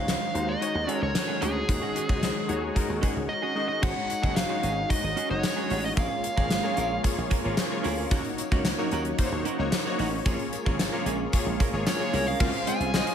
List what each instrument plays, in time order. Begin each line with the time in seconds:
Already playing: slap bass C#2, string machine D#3 G#3 C#4 F#4, synth keys G#3 D#4 F#4 C5, lead electric guitar F5
0.00 synth keys C#5
0.07 muted clean electric guitar stroke, snare, closed hi-hat
0.21 muted clean electric guitar stroke
0.34 slap bass D#2, synth keys G#3 D#4 F#4 C5, closed hi-hat
0.47 lead electric guitar D#5, muted clean electric guitar stroke
0.60 synth keys G#3 D#4 F#4 C#5, muted clean electric guitar stroke, closed hi-hat
0.75 slap bass D#2, muted clean electric guitar stroke
0.87 synth keys G#3 D#4 F#4 A4, clean electric guitar C#4 F#4 G#4, closed hi-hat
0.92 synth keys A#4, lead electric guitar C#5
1.01 slap bass C#2, lead electric guitar C#5, muted clean electric guitar stroke
1.14 muted clean electric guitar stroke, snare, closed hi-hat
1.28 clean electric guitar C#4 F#4 G#4
1.41 slap bass D2, synth keys G#3 D#4 F#4 C#5, clean electric guitar C#4 F#4 G#4, lead electric guitar G#4, closed hi-hat
1.55 muted clean electric guitar stroke
1.68 slap bass D#2, synth keys G#3 D#4 F#4 C#5, muted clean electric guitar stroke, kick, closed hi-hat
1.82 clean electric guitar C#4 F#4 G#4
1.95 clean electric guitar C#4 F#4 G#4, closed hi-hat
2.08 slap bass C#2, synth keys G#3 D#4 F#4 C#5, muted clean electric guitar stroke, kick
2.22 muted clean electric guitar stroke, snare, closed hi-hat
2.35 muted clean electric guitar stroke
2.48 slap bass D#2, synth keys G#3 D#4 F#4 C#5, closed hi-hat
2.62 muted clean electric guitar stroke
2.75 synth keys G#3 D#4 F#4 A#4, muted clean electric guitar stroke, kick, closed hi-hat
2.89 slap bass D#2, muted clean electric guitar stroke
3.01 synth keys G#3 D#4 F#4 C#5, clean electric guitar C#4 F#4 G#4, kick, closed hi-hat
3.16 slap bass C#2, muted clean electric guitar stroke
3.29 lead electric guitar D#5, muted clean electric guitar stroke
3.42 clean electric guitar C#4 F#4 G#4
3.55 synth keys G#3 D#4 F#4 D#5, clean electric guitar C#4 F#4 G#4
3.68 lead electric guitar D#5, muted clean electric guitar stroke
3.81 slap bass G#1, string machine D#3 G#3 C#4 F#4, synth keys G#3 D#4 F#4 C5, clean electric guitar C#4 F#4 G#4, lead electric guitar F#5, kick, crash, tambourine
3.89 synth keys C#5
3.96 muted clean electric guitar stroke
4.09 muted clean electric guitar stroke, closed hi-hat, tambourine
4.21 slap bass F#1, synth keys G#3 D#4 F#4 C#5, clean electric guitar C#4 F#4 G#4, kick
4.36 lead electric guitar F5, muted clean electric guitar stroke, snare, closed hi-hat, tambourine
4.49 synth keys G#3 D#4 F#4 C#5, clean electric guitar C#4 F#4 G#4
4.63 slap bass G#1, clean electric guitar C#4 F#4 G#4, closed hi-hat, tambourine
4.76 muted clean electric guitar stroke
4.89 synth keys G#3 D#4 F#4 D#5, lead electric guitar D#5, kick, closed hi-hat
5.03 slap bass G#1, muted clean electric guitar stroke
5.16 clean electric guitar C#4 F#4 G#4, closed hi-hat
5.29 slap bass F#1, synth keys G#3 D#4 F#4 D#5, lead electric guitar C#5, muted clean electric guitar stroke
5.43 muted clean electric guitar stroke, snare, closed hi-hat, tambourine
5.56 synth keys G#3 D#4 F#4 C#5, clean electric guitar C#4 F#4 G#4
5.70 slap bass A1, clean electric guitar C#4 F#4 G#4, open hi-hat, tambourine
5.83 lead electric guitar D#5, muted clean electric guitar stroke
5.95 slap bass A#1, string machine C#3 A#3 F4, synth keys A#3 F4 G#4 C#5, clean electric guitar C#4 G#4 A#4, lead electric guitar F5, kick, closed hi-hat, tambourine
6.10 muted clean electric guitar stroke
6.23 muted clean electric guitar stroke, closed hi-hat, tambourine
6.36 slap bass G#1, synth keys A#3 F4 G#4 C#5, clean electric guitar C#4 G#4 A#4, kick
6.50 muted clean electric guitar stroke, snare, closed hi-hat, tambourine
6.63 synth keys A#3 F4 G#4 C#5, clean electric guitar C#4 G#4 A#4
6.76 slap bass A#1, clean electric guitar C#4 G#4 A#4, closed hi-hat, tambourine
6.90 muted clean electric guitar stroke
7.03 synth keys A#3 F4 G#4 C#5, muted clean electric guitar stroke, kick, closed hi-hat, tambourine
7.17 slap bass A#1, muted clean electric guitar stroke
7.30 clean electric guitar C#4 G#4 A#4, kick, closed hi-hat
7.43 slap bass G#1, synth keys A#3 F4 G#4 C#5, clean electric guitar C#4 G#4 A#4
7.57 snare, closed hi-hat, tambourine
7.70 synth keys A#3 F4 G#4 C#5, muted clean electric guitar stroke
7.83 slap bass D2, clean electric guitar C#4 G#4 A#4, open hi-hat, tambourine
7.97 clean electric guitar C#4 G#4 A#4
8.11 slap bass D#2, string machine C#3 F#3 D#4, synth keys A#3 D#4 F#4 C#5, clean electric guitar C#4 F#4 A#4, kick, closed hi-hat, tambourine
8.24 muted clean electric guitar stroke, closed hi-hat
8.38 muted clean electric guitar stroke, closed hi-hat, tambourine
8.51 slap bass C#2, synth keys A#3 D#4 F#4 C#5, clean electric guitar C#4 F#4 A#4, kick
8.65 snare, closed hi-hat, tambourine
8.78 synth keys A#3 D#4 F#4 C#5, clean electric guitar C#4 F#4 A#4
8.91 slap bass D#2, clean electric guitar C#4 F#4 A#4, closed hi-hat, tambourine
9.05 muted clean electric guitar stroke, closed hi-hat
9.18 synth keys A#3 D#4 F#4 C5, kick, closed hi-hat, tambourine
9.26 synth keys C#5
9.32 slap bass D#2, muted clean electric guitar stroke
9.45 clean electric guitar C#4 F#4 A#4, closed hi-hat
9.59 slap bass C#2, synth keys A#3 D#4 F#4 C#5, muted clean electric guitar stroke
9.72 muted clean electric guitar stroke, snare, closed hi-hat, tambourine
9.85 synth keys A#3 D#4 F#4 C#5, clean electric guitar C#4 F#4 A#4
9.98 slap bass A1, clean electric guitar C#4 F#4 A#4, open hi-hat, tambourine
10.12 muted clean electric guitar stroke
10.25 slap bass A#1, string machine G#3 F4, synth keys A#3 F4 G#4 C#5, clean electric guitar C#4 G#4 A#4, kick, closed hi-hat, tambourine
10.39 muted clean electric guitar stroke, closed hi-hat
10.53 muted clean electric guitar stroke, closed hi-hat, tambourine
10.66 slap bass G#1, synth keys A#3 F4 G#4 C#5, clean electric guitar C#4 G#4 A#4, kick
10.79 muted clean electric guitar stroke, snare, closed hi-hat, tambourine
10.93 synth keys A#3 F4 G#4 C#5, clean electric guitar C#4 G#4 A#4
11.06 slap bass A#1, clean electric guitar C#4 G#4 A#4, closed hi-hat, tambourine
11.20 muted clean electric guitar stroke
11.32 synth keys A#3 F4 G#4 C#5, kick, closed hi-hat, tambourine
11.46 slap bass A#1, muted clean electric guitar stroke
11.60 clean electric guitar C#4 G#4 A#4, kick, closed hi-hat
11.73 slap bass G#1, synth keys A#3 F4 G#4 C#5, muted clean electric guitar stroke
11.86 lead electric guitar C#5, muted clean electric guitar stroke, snare, closed hi-hat, tambourine
11.99 synth keys A#3 F4 G#4 C#5, muted clean electric guitar stroke
12.13 slap bass C2, clean electric guitar C#4 G#4 A#4, open hi-hat, tambourine
12.26 clean electric guitar C#4 G#4 A#4, lead electric guitar F5
12.40 slap bass C#2, string machine C#3 G#3 F4 C5, analog polysynth A#3 F#4 A#4, clean electric guitar C4 F4 G#4, synth keys C#4 F4 G#4 C5 E5, kick, crash, tambourine
12.47 synth keys F5
12.54 closed hi-hat
12.67 analog polysynth G#3 F4 C5, clean electric guitar C4 F4 G#4, lead electric guitar G#5, closed hi-hat, tambourine
12.80 slap bass C2, clean electric guitar C4 F4 G#4, closed hi-hat
12.94 synth keys C#4 F4 G#4 C5 D#5, muted clean electric guitar stroke, snare, tambourine
13.07 muted clean electric guitar stroke, closed hi-hat